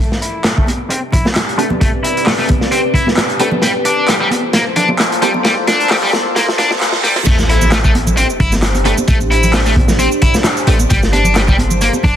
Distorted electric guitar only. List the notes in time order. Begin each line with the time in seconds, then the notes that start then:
0.22 E4
0.45 A3
0.57 A3
0.90 C4
1.13 E4
1.58 A3
1.81 A3
2.03 E4
2.26 A3
2.38 A3
2.72 C4
2.94 E4
3.40 A3
3.62 G3
3.85 D4
4.08 G3
4.21 G3
4.54 A#3
4.76 D4
5.22 G3
5.45 G3
5.68 D4
5.90 G3
6.03 G3
6.36 A#3
6.58 D4
7.04 G3
7.26 A3
7.50 E4
7.72 A3
7.84 A3
8.17 C4
8.40 E4
8.85 A3
9.08 A3
9.31 E4
9.54 A3
9.66 A3
9.99 C4
10.22 E4
10.68 A3
10.90 G3
11.13 D4
11.36 G3
11.48 G3
11.81 A#3
12.04 D4